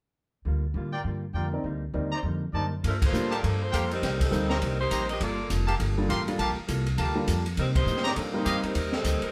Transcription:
0.45 upright bass D2, hollow-body jazz guitar D3 G3 A#3 F4
0.74 upright bass A2, hollow-body jazz guitar D3 G3 A#3 F4
0.93 trumpet section F4 A#4 D5 G5
1.04 upright bass G2, hollow-body jazz guitar D3 G3 A#3 F4
1.33 upright bass F2, hollow-body jazz guitar D3 G3 A#3 F4, trumpet section F4 A#4 D5 G5
1.53 grand piano C4 D#4 A#4 D5
1.64 upright bass D2, hollow-body jazz guitar D3 G3 A#3 D#4
1.94 upright bass D#2, hollow-body jazz guitar D3 G3 A#3 D#4, grand piano C4 D#4 A#4 D5
2.12 trumpet section D#4 C5 D5 A#5
2.23 upright bass F2, hollow-body jazz guitar D3 G3 A#3 D#4
2.53 upright bass F#2, hollow-body jazz guitar D3 G3 A#3 D#4, trumpet section D#4 C5 D5 A5
2.83 upright bass G2, saxophone section F3 A3 D4 A#4, hollow-body jazz guitar G3 A#3 F4 A4, kick, ride
3.02 saxophone section A#3 F4 A4 C5, kick, ride
3.12 upright bass A2, grand piano G3 A#3 D4 F4 A4, hollow-body jazz guitar G3 A#3 F4 A4, hi-hat pedal
3.30 saxophone section A#3 F4 A4 D5, trumpet section G4 A#4 F5 A5, ride
3.42 upright bass G2, saxophone section F3 A#3 D4 A4, hollow-body jazz guitar G3 A#3 F4 A4, kick, ride
3.63 saxophone section A#3 F4 A4 C5
3.72 upright bass F2, hollow-body jazz guitar G3 A#3 F4 A4, trumpet section G4 A#4 F5 G5, kick, hi-hat pedal, ride
3.91 saxophone section G3 C4 D#4 A#4, ride
4.02 upright bass C2, hollow-body jazz guitar C3 G3 A#3 D#4, kick, snare, ride
4.20 saxophone section G3 C4 D#4 A4, kick, ride
4.31 upright bass D2, hollow-body jazz guitar C3 G3 A#3 D#4, grand piano G3 A#3 C4 D#4 A#4, kick, hi-hat pedal
4.49 saxophone section G3 C4 D#4 A#4, trumpet section G4 C5 D#5 A#5, snare
4.61 upright bass C2, hollow-body jazz guitar C3 G3 A#3 D#4, kick, ride
4.79 saxophone section A#3 D#4 G4 C5
4.90 upright bass A#1, hollow-body jazz guitar C3 G3 A#3 D#4, trumpet section G4 C5 D#5 A#5, kick, hi-hat pedal, ride
5.09 saxophone section C4 G4 A#4 D#5, ride
5.20 upright bass G1, hollow-body jazz guitar G3 A#3 F4 A4, saxophone section A#3 F4 A4 D5, kick, ride
5.50 upright bass F1, hollow-body jazz guitar G3 A#3 F4 A4, kick, hi-hat pedal, ride
5.67 trumpet section G4 A#4 F5 A5, ride
5.79 upright bass G1, hollow-body jazz guitar G3 A#3 F4 A4, kick, ride
5.98 grand piano G3 A#3 D4 F4 A4
6.09 upright bass A1, hollow-body jazz guitar G3 A#3 F4 A4, trumpet section G4 A#4 F5 C6, kick, hi-hat pedal, ride
6.27 grand piano G3 A#3 D4 F4 A4, ride
6.38 upright bass A#1, hollow-body jazz guitar G3 A#3 F4 A4, trumpet section G4 A#4 F5 A5, kick, ride
6.56 muted upright bass stroke
6.67 upright bass C2, hollow-body jazz guitar G3 A#3 F4 A4, kick, hi-hat pedal, ride
6.86 ride
6.96 upright bass D2, hollow-body jazz guitar G3 A#3 F4 A4, trumpet section G4 A#4 F5 A5, kick, ride
7.15 grand piano G3 A#3 D4 F4 A4
7.27 upright bass F2, hollow-body jazz guitar G3 A#3 F4 A4, kick, hi-hat pedal, ride
7.46 ride
7.57 hollow-body jazz guitar C3 G3 A#3 D#4, upright bass C3, saxophone section G3 C4 D#4 A#4, kick, ride
7.75 saxophone section A#3 D#4 G4 C5, kick, ride
7.86 upright bass A2, hollow-body jazz guitar C3 G3 A#3 D#4, hi-hat pedal
7.97 snare
8.03 saxophone section A#3 D#4 G4 D5, trumpet section G4 C5 D#5 A#5, snare, ride
8.15 upright bass A#2, hollow-body jazz guitar C3 G3 A#3 D#4, saxophone section F3 A#3 D4 A4, kick, ride
8.33 grand piano G3 A#3 C4 D#4 A#4, saxophone section A#3 D#4 G4 C5
8.45 upright bass G2, hollow-body jazz guitar C3 G3 A#3 D#4, trumpet section G4 C5 D#5 F5, kick, hi-hat pedal, ride
8.63 saxophone section G3 C4 D#4 A#4, muted upright bass stroke, ride
8.73 upright bass D#2, hollow-body jazz guitar C3 G3 A#3 D#4, kick, ride
8.92 saxophone section G3 C4 D#4 A4, snare
9.03 upright bass D2, hollow-body jazz guitar C3 G3 A#3 D#4, kick, hi-hat pedal, ride
9.22 saxophone section G3 C4 D#4 A#4, muted upright bass stroke, ride

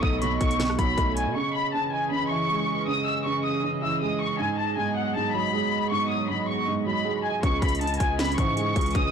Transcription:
Already playing: felt piano B2 F#3 A3, analog synth pad F#3 B3 A4 D#5
0.03 808-style bass B1, violin section D#6, kick
0.22 felt piano B2, violin section B5, synth bell C#6, closed hi-hat
0.41 808-style bass B1, violin section C#6, kick, closed hi-hat
0.51 closed hi-hat
0.59 felt piano B2, snare, closed hi-hat
0.70 cross-stick
0.78 808-style bass B1, felt piano F#3, violin section B5, synth bell B5, kick, closed hi-hat
0.98 808-style bass B1, felt piano A3, kick, closed hi-hat
1.17 violin section G#5, closed hi-hat
1.27 808-style bass B2
1.36 felt piano C#3, analog synth pad E3 C#4 G#4 D#5, violin section C#6
1.54 violin section B5
1.73 felt piano C#3, violin section A5
1.93 violin section G#5
2.11 felt piano C#3, violin section B5
2.30 felt piano E3, violin section C#6
2.50 felt piano G#3
2.87 felt piano C#3, violin section D#6
3.07 violin section E6
3.26 felt piano C#3, violin section C#6
3.44 violin section D#6
3.63 felt piano C#3
3.82 felt piano E3, violin section E6
4.01 felt piano G#3, violin section D#6
4.21 violin section C#6
4.39 felt piano G#2, analog synth pad F#3 B3, violin section G#5
4.58 violin section A5
4.77 felt piano G#2, violin section G#5
4.96 violin section F#5
5.15 felt piano G#2, violin section A5
5.34 felt piano F#3, violin section B5
5.53 felt piano G#3
5.91 felt piano G#2, violin section C#6
6.10 violin section D#6
6.29 felt piano G#2, violin section B5
6.48 violin section C#6
6.67 felt piano G#2
6.86 felt piano F#3, violin section B5
7.05 felt piano G#3
7.24 violin section G#5
7.43 808-style bass C#2, felt piano C#3, analog synth pad E3 C#4 G#4, violin section C#6, kick, closed hi-hat
7.62 808-style bass C#2, violin section B5, kick, closed hi-hat
7.68 closed hi-hat
7.75 closed hi-hat
7.81 felt piano C#3, violin section A5, closed hi-hat
7.87 closed hi-hat
7.94 closed hi-hat
8.00 808-style bass C#2, violin section G#5, kick, closed hi-hat
8.19 felt piano C#3, violin section B5, snare, closed hi-hat
8.25 closed hi-hat
8.32 closed hi-hat
8.38 808-style bass G#2, felt piano E3, violin section C#6, kick, closed hi-hat
8.57 felt piano G#3, closed hi-hat
8.76 808-style bass C#2, kick, closed hi-hat
8.81 closed hi-hat
8.86 closed hi-hat
8.91 closed hi-hat
8.95 808-style bass C#2, felt piano C#3, violin section D#6, kick, closed hi-hat

